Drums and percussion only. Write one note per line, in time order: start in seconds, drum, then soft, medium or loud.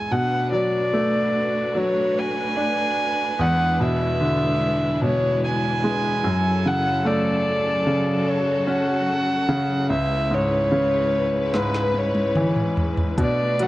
11.54 snare soft
11.74 snare soft
11.94 high tom medium
12.15 high tom medium
12.35 mid tom medium
12.56 mid tom medium
12.77 floor tom medium
12.97 floor tom medium
13.18 kick loud
13.18 closed hi-hat medium
13.59 closed hi-hat medium